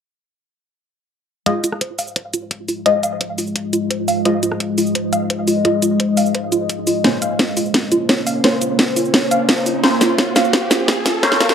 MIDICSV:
0, 0, Header, 1, 6, 480
1, 0, Start_track
1, 0, Key_signature, -4, "minor"
1, 0, Tempo, 348837
1, 2013, Time_signature, 4, 2, 24, 8
1, 15886, End_track
2, 0, Start_track
2, 0, Title_t, "Synth pluck"
2, 0, Program_c, 0, 84
2, 2253, Note_on_c, 0, 65, 77
2, 2416, Note_off_c, 0, 65, 0
2, 2493, Note_on_c, 0, 72, 76
2, 2656, Note_off_c, 0, 72, 0
2, 2733, Note_on_c, 0, 77, 100
2, 2962, Note_off_c, 0, 77, 0
2, 2974, Note_on_c, 0, 72, 81
2, 3202, Note_off_c, 0, 72, 0
2, 3213, Note_on_c, 0, 65, 76
2, 3311, Note_off_c, 0, 65, 0
2, 3694, Note_on_c, 0, 65, 77
2, 3856, Note_off_c, 0, 65, 0
2, 3934, Note_on_c, 0, 72, 92
2, 4096, Note_off_c, 0, 72, 0
2, 4173, Note_on_c, 0, 77, 105
2, 4401, Note_off_c, 0, 77, 0
2, 4414, Note_on_c, 0, 72, 73
2, 4642, Note_off_c, 0, 72, 0
2, 4654, Note_on_c, 0, 65, 73
2, 4751, Note_off_c, 0, 65, 0
2, 5133, Note_on_c, 0, 65, 77
2, 5296, Note_off_c, 0, 65, 0
2, 5373, Note_on_c, 0, 72, 80
2, 5536, Note_off_c, 0, 72, 0
2, 5613, Note_on_c, 0, 77, 101
2, 5842, Note_off_c, 0, 77, 0
2, 5854, Note_on_c, 0, 72, 92
2, 6082, Note_off_c, 0, 72, 0
2, 6094, Note_on_c, 0, 65, 78
2, 6191, Note_off_c, 0, 65, 0
2, 6573, Note_on_c, 0, 65, 74
2, 6736, Note_off_c, 0, 65, 0
2, 6814, Note_on_c, 0, 72, 81
2, 6976, Note_off_c, 0, 72, 0
2, 7053, Note_on_c, 0, 77, 112
2, 7281, Note_off_c, 0, 77, 0
2, 7293, Note_on_c, 0, 72, 78
2, 7521, Note_off_c, 0, 72, 0
2, 7533, Note_on_c, 0, 65, 80
2, 7631, Note_off_c, 0, 65, 0
2, 8013, Note_on_c, 0, 65, 80
2, 8176, Note_off_c, 0, 65, 0
2, 8253, Note_on_c, 0, 72, 73
2, 8416, Note_off_c, 0, 72, 0
2, 8493, Note_on_c, 0, 77, 101
2, 8721, Note_off_c, 0, 77, 0
2, 8733, Note_on_c, 0, 72, 81
2, 8962, Note_off_c, 0, 72, 0
2, 8973, Note_on_c, 0, 65, 84
2, 9071, Note_off_c, 0, 65, 0
2, 9453, Note_on_c, 0, 65, 76
2, 9551, Note_off_c, 0, 65, 0
2, 9692, Note_on_c, 0, 73, 86
2, 9856, Note_off_c, 0, 73, 0
2, 9933, Note_on_c, 0, 77, 104
2, 10161, Note_off_c, 0, 77, 0
2, 10173, Note_on_c, 0, 72, 74
2, 10401, Note_off_c, 0, 72, 0
2, 10413, Note_on_c, 0, 65, 74
2, 10511, Note_off_c, 0, 65, 0
2, 10893, Note_on_c, 0, 65, 80
2, 11056, Note_off_c, 0, 65, 0
2, 11134, Note_on_c, 0, 73, 82
2, 11296, Note_off_c, 0, 73, 0
2, 11373, Note_on_c, 0, 77, 108
2, 11601, Note_off_c, 0, 77, 0
2, 11614, Note_on_c, 0, 72, 89
2, 11842, Note_off_c, 0, 72, 0
2, 11853, Note_on_c, 0, 65, 76
2, 11951, Note_off_c, 0, 65, 0
2, 12334, Note_on_c, 0, 65, 77
2, 12496, Note_off_c, 0, 65, 0
2, 12573, Note_on_c, 0, 73, 83
2, 12736, Note_off_c, 0, 73, 0
2, 12813, Note_on_c, 0, 77, 106
2, 13042, Note_off_c, 0, 77, 0
2, 13054, Note_on_c, 0, 72, 81
2, 13282, Note_off_c, 0, 72, 0
2, 13294, Note_on_c, 0, 65, 75
2, 13391, Note_off_c, 0, 65, 0
2, 13774, Note_on_c, 0, 65, 78
2, 13936, Note_off_c, 0, 65, 0
2, 14013, Note_on_c, 0, 73, 78
2, 14176, Note_off_c, 0, 73, 0
2, 14253, Note_on_c, 0, 77, 102
2, 14482, Note_off_c, 0, 77, 0
2, 14493, Note_on_c, 0, 72, 83
2, 14722, Note_off_c, 0, 72, 0
2, 14734, Note_on_c, 0, 65, 85
2, 14831, Note_off_c, 0, 65, 0
2, 15214, Note_on_c, 0, 65, 81
2, 15376, Note_off_c, 0, 65, 0
2, 15453, Note_on_c, 0, 73, 92
2, 15616, Note_off_c, 0, 73, 0
2, 15693, Note_on_c, 0, 77, 106
2, 15886, Note_off_c, 0, 77, 0
2, 15886, End_track
3, 0, Start_track
3, 0, Title_t, "Ambient pad"
3, 0, Program_c, 1, 92
3, 2014, Note_on_c, 1, 56, 85
3, 2014, Note_on_c, 1, 65, 77
3, 2014, Note_on_c, 1, 75, 93
3, 9639, Note_off_c, 1, 56, 0
3, 9639, Note_off_c, 1, 65, 0
3, 9639, Note_off_c, 1, 75, 0
3, 9694, Note_on_c, 1, 58, 82
3, 9694, Note_on_c, 1, 61, 80
3, 9694, Note_on_c, 1, 72, 95
3, 15886, Note_off_c, 1, 58, 0
3, 15886, Note_off_c, 1, 61, 0
3, 15886, Note_off_c, 1, 72, 0
3, 15886, End_track
4, 0, Start_track
4, 0, Title_t, "Synth stab"
4, 0, Program_c, 2, 62
4, 2013, Note_on_c, 2, 56, 84
4, 2013, Note_on_c, 2, 65, 82
4, 2013, Note_on_c, 2, 75, 97
4, 2116, Note_off_c, 2, 56, 0
4, 2116, Note_off_c, 2, 65, 0
4, 2116, Note_off_c, 2, 75, 0
4, 3932, Note_on_c, 2, 75, 100
4, 3933, Note_on_c, 2, 56, 90
4, 3933, Note_on_c, 2, 65, 80
4, 4036, Note_off_c, 2, 56, 0
4, 4036, Note_off_c, 2, 65, 0
4, 4036, Note_off_c, 2, 75, 0
4, 5852, Note_on_c, 2, 65, 82
4, 5853, Note_on_c, 2, 56, 85
4, 5853, Note_on_c, 2, 75, 99
4, 5956, Note_off_c, 2, 56, 0
4, 5956, Note_off_c, 2, 65, 0
4, 5956, Note_off_c, 2, 75, 0
4, 7774, Note_on_c, 2, 56, 87
4, 7774, Note_on_c, 2, 65, 81
4, 7774, Note_on_c, 2, 75, 98
4, 7877, Note_off_c, 2, 56, 0
4, 7877, Note_off_c, 2, 65, 0
4, 7877, Note_off_c, 2, 75, 0
4, 9692, Note_on_c, 2, 58, 89
4, 9692, Note_on_c, 2, 61, 85
4, 9692, Note_on_c, 2, 72, 101
4, 9796, Note_off_c, 2, 58, 0
4, 9796, Note_off_c, 2, 61, 0
4, 9796, Note_off_c, 2, 72, 0
4, 11613, Note_on_c, 2, 58, 89
4, 11613, Note_on_c, 2, 61, 79
4, 11613, Note_on_c, 2, 72, 99
4, 11716, Note_off_c, 2, 58, 0
4, 11716, Note_off_c, 2, 61, 0
4, 11716, Note_off_c, 2, 72, 0
4, 13534, Note_on_c, 2, 58, 92
4, 13534, Note_on_c, 2, 61, 84
4, 13534, Note_on_c, 2, 72, 97
4, 13637, Note_off_c, 2, 58, 0
4, 13637, Note_off_c, 2, 61, 0
4, 13637, Note_off_c, 2, 72, 0
4, 15453, Note_on_c, 2, 58, 89
4, 15453, Note_on_c, 2, 61, 88
4, 15454, Note_on_c, 2, 72, 97
4, 15556, Note_off_c, 2, 58, 0
4, 15556, Note_off_c, 2, 61, 0
4, 15557, Note_off_c, 2, 72, 0
4, 15886, End_track
5, 0, Start_track
5, 0, Title_t, "Riser"
5, 0, Program_c, 3, 103
5, 9692, Note_on_c, 3, 60, 77
5, 15886, Note_off_c, 3, 60, 0
5, 15886, End_track
6, 0, Start_track
6, 0, Title_t, "Drums"
6, 2013, Note_on_c, 9, 36, 96
6, 2013, Note_on_c, 9, 42, 93
6, 2151, Note_off_c, 9, 36, 0
6, 2151, Note_off_c, 9, 42, 0
6, 2253, Note_on_c, 9, 42, 73
6, 2253, Note_on_c, 9, 82, 59
6, 2373, Note_on_c, 9, 37, 34
6, 2391, Note_off_c, 9, 42, 0
6, 2391, Note_off_c, 9, 82, 0
6, 2493, Note_on_c, 9, 36, 96
6, 2493, Note_on_c, 9, 42, 92
6, 2510, Note_off_c, 9, 37, 0
6, 2630, Note_off_c, 9, 42, 0
6, 2631, Note_off_c, 9, 36, 0
6, 2733, Note_on_c, 9, 46, 76
6, 2733, Note_on_c, 9, 82, 58
6, 2853, Note_off_c, 9, 82, 0
6, 2853, Note_on_c, 9, 82, 26
6, 2870, Note_off_c, 9, 46, 0
6, 2972, Note_on_c, 9, 42, 92
6, 2973, Note_on_c, 9, 36, 100
6, 2990, Note_off_c, 9, 82, 0
6, 3110, Note_off_c, 9, 42, 0
6, 3111, Note_off_c, 9, 36, 0
6, 3213, Note_on_c, 9, 42, 68
6, 3213, Note_on_c, 9, 82, 54
6, 3351, Note_off_c, 9, 42, 0
6, 3351, Note_off_c, 9, 82, 0
6, 3453, Note_on_c, 9, 36, 97
6, 3453, Note_on_c, 9, 42, 94
6, 3591, Note_off_c, 9, 36, 0
6, 3591, Note_off_c, 9, 42, 0
6, 3693, Note_on_c, 9, 46, 74
6, 3693, Note_on_c, 9, 82, 57
6, 3831, Note_off_c, 9, 46, 0
6, 3831, Note_off_c, 9, 82, 0
6, 3933, Note_on_c, 9, 36, 96
6, 3934, Note_on_c, 9, 42, 88
6, 4071, Note_off_c, 9, 36, 0
6, 4071, Note_off_c, 9, 42, 0
6, 4173, Note_on_c, 9, 42, 67
6, 4173, Note_on_c, 9, 82, 55
6, 4311, Note_off_c, 9, 42, 0
6, 4311, Note_off_c, 9, 82, 0
6, 4413, Note_on_c, 9, 36, 97
6, 4413, Note_on_c, 9, 42, 89
6, 4551, Note_off_c, 9, 36, 0
6, 4551, Note_off_c, 9, 42, 0
6, 4653, Note_on_c, 9, 46, 76
6, 4653, Note_on_c, 9, 82, 58
6, 4773, Note_off_c, 9, 82, 0
6, 4773, Note_on_c, 9, 82, 27
6, 4791, Note_off_c, 9, 46, 0
6, 4893, Note_on_c, 9, 36, 103
6, 4893, Note_on_c, 9, 42, 94
6, 4911, Note_off_c, 9, 82, 0
6, 5031, Note_off_c, 9, 36, 0
6, 5031, Note_off_c, 9, 42, 0
6, 5134, Note_on_c, 9, 42, 65
6, 5134, Note_on_c, 9, 82, 53
6, 5272, Note_off_c, 9, 42, 0
6, 5272, Note_off_c, 9, 82, 0
6, 5373, Note_on_c, 9, 36, 96
6, 5374, Note_on_c, 9, 42, 88
6, 5511, Note_off_c, 9, 36, 0
6, 5512, Note_off_c, 9, 42, 0
6, 5615, Note_on_c, 9, 46, 75
6, 5615, Note_on_c, 9, 82, 59
6, 5752, Note_off_c, 9, 46, 0
6, 5752, Note_off_c, 9, 82, 0
6, 5853, Note_on_c, 9, 36, 100
6, 5854, Note_on_c, 9, 42, 88
6, 5991, Note_off_c, 9, 36, 0
6, 5992, Note_off_c, 9, 42, 0
6, 6094, Note_on_c, 9, 42, 67
6, 6094, Note_on_c, 9, 82, 57
6, 6214, Note_on_c, 9, 37, 34
6, 6231, Note_off_c, 9, 42, 0
6, 6231, Note_off_c, 9, 82, 0
6, 6333, Note_on_c, 9, 36, 101
6, 6334, Note_on_c, 9, 42, 86
6, 6352, Note_off_c, 9, 37, 0
6, 6471, Note_off_c, 9, 36, 0
6, 6471, Note_off_c, 9, 42, 0
6, 6574, Note_on_c, 9, 46, 77
6, 6574, Note_on_c, 9, 82, 56
6, 6694, Note_off_c, 9, 82, 0
6, 6694, Note_on_c, 9, 82, 25
6, 6712, Note_off_c, 9, 46, 0
6, 6813, Note_on_c, 9, 36, 104
6, 6814, Note_on_c, 9, 42, 89
6, 6832, Note_off_c, 9, 82, 0
6, 6951, Note_off_c, 9, 36, 0
6, 6952, Note_off_c, 9, 42, 0
6, 7054, Note_on_c, 9, 42, 62
6, 7054, Note_on_c, 9, 82, 53
6, 7192, Note_off_c, 9, 42, 0
6, 7192, Note_off_c, 9, 82, 0
6, 7293, Note_on_c, 9, 36, 96
6, 7293, Note_on_c, 9, 42, 90
6, 7431, Note_off_c, 9, 36, 0
6, 7431, Note_off_c, 9, 42, 0
6, 7533, Note_on_c, 9, 46, 82
6, 7533, Note_on_c, 9, 82, 55
6, 7671, Note_off_c, 9, 46, 0
6, 7671, Note_off_c, 9, 82, 0
6, 7773, Note_on_c, 9, 36, 100
6, 7773, Note_on_c, 9, 42, 85
6, 7911, Note_off_c, 9, 36, 0
6, 7911, Note_off_c, 9, 42, 0
6, 8013, Note_on_c, 9, 42, 65
6, 8013, Note_on_c, 9, 82, 59
6, 8151, Note_off_c, 9, 42, 0
6, 8151, Note_off_c, 9, 82, 0
6, 8253, Note_on_c, 9, 36, 102
6, 8253, Note_on_c, 9, 42, 85
6, 8391, Note_off_c, 9, 36, 0
6, 8391, Note_off_c, 9, 42, 0
6, 8493, Note_on_c, 9, 46, 84
6, 8493, Note_on_c, 9, 82, 58
6, 8613, Note_off_c, 9, 82, 0
6, 8613, Note_on_c, 9, 82, 26
6, 8631, Note_off_c, 9, 46, 0
6, 8732, Note_on_c, 9, 42, 87
6, 8733, Note_on_c, 9, 36, 101
6, 8751, Note_off_c, 9, 82, 0
6, 8869, Note_off_c, 9, 42, 0
6, 8870, Note_off_c, 9, 36, 0
6, 8973, Note_on_c, 9, 42, 59
6, 8973, Note_on_c, 9, 82, 53
6, 9110, Note_off_c, 9, 42, 0
6, 9110, Note_off_c, 9, 82, 0
6, 9212, Note_on_c, 9, 42, 89
6, 9212, Note_on_c, 9, 82, 27
6, 9213, Note_on_c, 9, 36, 97
6, 9350, Note_off_c, 9, 36, 0
6, 9350, Note_off_c, 9, 42, 0
6, 9350, Note_off_c, 9, 82, 0
6, 9453, Note_on_c, 9, 46, 80
6, 9453, Note_on_c, 9, 82, 60
6, 9590, Note_off_c, 9, 46, 0
6, 9590, Note_off_c, 9, 82, 0
6, 9693, Note_on_c, 9, 36, 98
6, 9693, Note_on_c, 9, 38, 47
6, 9693, Note_on_c, 9, 42, 83
6, 9830, Note_off_c, 9, 36, 0
6, 9830, Note_off_c, 9, 38, 0
6, 9830, Note_off_c, 9, 42, 0
6, 9933, Note_on_c, 9, 42, 65
6, 9933, Note_on_c, 9, 82, 60
6, 10071, Note_off_c, 9, 42, 0
6, 10071, Note_off_c, 9, 82, 0
6, 10173, Note_on_c, 9, 36, 99
6, 10173, Note_on_c, 9, 38, 49
6, 10173, Note_on_c, 9, 42, 86
6, 10310, Note_off_c, 9, 38, 0
6, 10310, Note_off_c, 9, 42, 0
6, 10311, Note_off_c, 9, 36, 0
6, 10413, Note_on_c, 9, 46, 87
6, 10413, Note_on_c, 9, 82, 60
6, 10534, Note_off_c, 9, 82, 0
6, 10534, Note_on_c, 9, 82, 27
6, 10550, Note_off_c, 9, 46, 0
6, 10653, Note_on_c, 9, 36, 96
6, 10653, Note_on_c, 9, 38, 52
6, 10653, Note_on_c, 9, 42, 90
6, 10671, Note_off_c, 9, 82, 0
6, 10791, Note_off_c, 9, 36, 0
6, 10791, Note_off_c, 9, 38, 0
6, 10791, Note_off_c, 9, 42, 0
6, 10893, Note_on_c, 9, 42, 61
6, 10893, Note_on_c, 9, 82, 58
6, 11031, Note_off_c, 9, 42, 0
6, 11031, Note_off_c, 9, 82, 0
6, 11133, Note_on_c, 9, 36, 100
6, 11134, Note_on_c, 9, 38, 55
6, 11134, Note_on_c, 9, 42, 89
6, 11271, Note_off_c, 9, 36, 0
6, 11272, Note_off_c, 9, 38, 0
6, 11272, Note_off_c, 9, 42, 0
6, 11374, Note_on_c, 9, 46, 83
6, 11374, Note_on_c, 9, 82, 61
6, 11512, Note_off_c, 9, 46, 0
6, 11512, Note_off_c, 9, 82, 0
6, 11613, Note_on_c, 9, 36, 100
6, 11614, Note_on_c, 9, 38, 55
6, 11614, Note_on_c, 9, 42, 93
6, 11751, Note_off_c, 9, 36, 0
6, 11752, Note_off_c, 9, 38, 0
6, 11752, Note_off_c, 9, 42, 0
6, 11854, Note_on_c, 9, 42, 69
6, 11854, Note_on_c, 9, 82, 62
6, 11992, Note_off_c, 9, 42, 0
6, 11992, Note_off_c, 9, 82, 0
6, 12093, Note_on_c, 9, 36, 102
6, 12094, Note_on_c, 9, 38, 61
6, 12094, Note_on_c, 9, 42, 92
6, 12231, Note_off_c, 9, 36, 0
6, 12231, Note_off_c, 9, 38, 0
6, 12231, Note_off_c, 9, 42, 0
6, 12334, Note_on_c, 9, 46, 85
6, 12334, Note_on_c, 9, 82, 60
6, 12453, Note_off_c, 9, 82, 0
6, 12453, Note_on_c, 9, 82, 30
6, 12471, Note_off_c, 9, 46, 0
6, 12573, Note_on_c, 9, 36, 96
6, 12574, Note_on_c, 9, 38, 69
6, 12574, Note_on_c, 9, 42, 89
6, 12591, Note_off_c, 9, 82, 0
6, 12711, Note_off_c, 9, 36, 0
6, 12711, Note_off_c, 9, 38, 0
6, 12711, Note_off_c, 9, 42, 0
6, 12814, Note_on_c, 9, 42, 62
6, 12814, Note_on_c, 9, 82, 58
6, 12952, Note_off_c, 9, 42, 0
6, 12952, Note_off_c, 9, 82, 0
6, 13053, Note_on_c, 9, 36, 102
6, 13054, Note_on_c, 9, 38, 73
6, 13054, Note_on_c, 9, 42, 96
6, 13191, Note_off_c, 9, 36, 0
6, 13192, Note_off_c, 9, 38, 0
6, 13192, Note_off_c, 9, 42, 0
6, 13295, Note_on_c, 9, 46, 85
6, 13295, Note_on_c, 9, 82, 64
6, 13432, Note_off_c, 9, 46, 0
6, 13432, Note_off_c, 9, 82, 0
6, 13534, Note_on_c, 9, 36, 102
6, 13534, Note_on_c, 9, 38, 71
6, 13534, Note_on_c, 9, 42, 87
6, 13671, Note_off_c, 9, 36, 0
6, 13672, Note_off_c, 9, 38, 0
6, 13672, Note_off_c, 9, 42, 0
6, 13774, Note_on_c, 9, 38, 80
6, 13774, Note_on_c, 9, 42, 70
6, 13774, Note_on_c, 9, 82, 63
6, 13912, Note_off_c, 9, 38, 0
6, 13912, Note_off_c, 9, 42, 0
6, 13912, Note_off_c, 9, 82, 0
6, 14013, Note_on_c, 9, 36, 97
6, 14014, Note_on_c, 9, 38, 74
6, 14014, Note_on_c, 9, 42, 95
6, 14151, Note_off_c, 9, 36, 0
6, 14151, Note_off_c, 9, 38, 0
6, 14151, Note_off_c, 9, 42, 0
6, 14254, Note_on_c, 9, 38, 81
6, 14254, Note_on_c, 9, 46, 82
6, 14254, Note_on_c, 9, 82, 62
6, 14374, Note_off_c, 9, 82, 0
6, 14374, Note_on_c, 9, 82, 28
6, 14392, Note_off_c, 9, 38, 0
6, 14392, Note_off_c, 9, 46, 0
6, 14493, Note_on_c, 9, 36, 98
6, 14494, Note_on_c, 9, 38, 80
6, 14494, Note_on_c, 9, 42, 96
6, 14512, Note_off_c, 9, 82, 0
6, 14631, Note_off_c, 9, 36, 0
6, 14632, Note_off_c, 9, 38, 0
6, 14632, Note_off_c, 9, 42, 0
6, 14734, Note_on_c, 9, 38, 83
6, 14734, Note_on_c, 9, 42, 66
6, 14734, Note_on_c, 9, 82, 60
6, 14872, Note_off_c, 9, 38, 0
6, 14872, Note_off_c, 9, 42, 0
6, 14872, Note_off_c, 9, 82, 0
6, 14973, Note_on_c, 9, 38, 93
6, 14973, Note_on_c, 9, 42, 97
6, 14974, Note_on_c, 9, 36, 95
6, 15111, Note_off_c, 9, 36, 0
6, 15111, Note_off_c, 9, 38, 0
6, 15111, Note_off_c, 9, 42, 0
6, 15214, Note_on_c, 9, 38, 92
6, 15214, Note_on_c, 9, 46, 84
6, 15214, Note_on_c, 9, 82, 64
6, 15352, Note_off_c, 9, 38, 0
6, 15352, Note_off_c, 9, 46, 0
6, 15352, Note_off_c, 9, 82, 0
6, 15453, Note_on_c, 9, 36, 99
6, 15454, Note_on_c, 9, 38, 90
6, 15454, Note_on_c, 9, 42, 92
6, 15573, Note_off_c, 9, 38, 0
6, 15573, Note_on_c, 9, 38, 81
6, 15591, Note_off_c, 9, 36, 0
6, 15591, Note_off_c, 9, 42, 0
6, 15693, Note_off_c, 9, 38, 0
6, 15693, Note_on_c, 9, 38, 94
6, 15693, Note_on_c, 9, 42, 74
6, 15693, Note_on_c, 9, 82, 62
6, 15814, Note_off_c, 9, 38, 0
6, 15814, Note_off_c, 9, 82, 0
6, 15814, Note_on_c, 9, 38, 87
6, 15814, Note_on_c, 9, 82, 30
6, 15831, Note_off_c, 9, 42, 0
6, 15886, Note_off_c, 9, 38, 0
6, 15886, Note_off_c, 9, 82, 0
6, 15886, End_track
0, 0, End_of_file